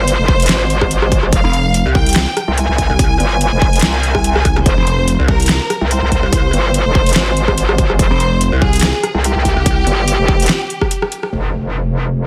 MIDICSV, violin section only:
0, 0, Header, 1, 2, 480
1, 0, Start_track
1, 0, Key_signature, -4, "minor"
1, 0, Tempo, 416667
1, 1528, Time_signature, 4, 2, 24, 8
1, 14133, End_track
2, 0, Start_track
2, 0, Title_t, "Violin section"
2, 0, Program_c, 0, 48
2, 0, Note_on_c, 0, 72, 106
2, 1439, Note_off_c, 0, 72, 0
2, 1527, Note_on_c, 0, 77, 107
2, 2160, Note_off_c, 0, 77, 0
2, 2246, Note_on_c, 0, 79, 103
2, 2880, Note_off_c, 0, 79, 0
2, 2967, Note_on_c, 0, 80, 103
2, 5280, Note_off_c, 0, 80, 0
2, 5365, Note_on_c, 0, 72, 104
2, 5999, Note_off_c, 0, 72, 0
2, 6086, Note_on_c, 0, 70, 98
2, 6719, Note_off_c, 0, 70, 0
2, 6808, Note_on_c, 0, 72, 105
2, 9120, Note_off_c, 0, 72, 0
2, 9207, Note_on_c, 0, 72, 106
2, 9840, Note_off_c, 0, 72, 0
2, 9925, Note_on_c, 0, 68, 100
2, 10559, Note_off_c, 0, 68, 0
2, 10646, Note_on_c, 0, 67, 109
2, 12959, Note_off_c, 0, 67, 0
2, 14133, End_track
0, 0, End_of_file